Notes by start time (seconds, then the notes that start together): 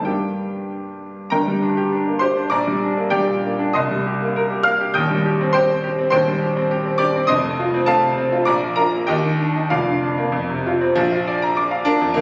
0.02 G2 G3 A#3 G5
0.06 D4 G4
1.30 G1 G2 A#4 G5 A#5
1.48 G3
1.62 D4
1.77 G4
1.92 D4
2.07 A#3
2.19 G4 C5 C6
2.37 D4
2.50 A#1 D5 A#5 D6
2.67 G3
2.83 D4
2.97 A#3
3.10 G3 G4 D5 G5
3.28 A#2
3.43 A#3
3.59 D4
3.73 C2 D#5 C6 D#6
3.91 G3
4.06 G4
4.22 A#3
4.36 A#4
4.50 G4
4.63 A#3 F5 F6
4.80 G4
4.94 D#1 D#2 G5 D#6 G6
5.11 G3
5.25 G4
5.41 C4
5.53 G4 C5 G5 C6
5.70 C4
5.84 G4
5.99 C4
6.10 D#1 D#2 C5 G5 C6
6.28 G3
6.42 G4
6.57 C4
6.71 G4
6.85 C4
6.98 G4 D5 D6
7.16 C4
7.27 F1 F2 D#5 C6 D#6
7.44 A3
7.59 F4
7.74 C4
7.86 A3 A4 F5 A5
8.03 C3
8.18 C4
8.32 F4
8.45 A#1 D5 A#5 D6
8.62 F3
8.76 F4 A#4 A#5
8.93 A#3
9.07 D#2 G4 D#5 G5
9.24 D#3
9.39 D4
9.56 D#4
9.70 F1 F2 F4 D5 F5
9.88 D3
10.03 D4
10.18 A#3
10.32 F2
10.50 C3
10.66 F4
10.81 C4
10.95 A#1 F3
11.12 F4
11.27 D5
11.42 A#5
11.57 D6
11.71 F5
11.85 D4 A#4
12.01 F2
12.14 D2 A#3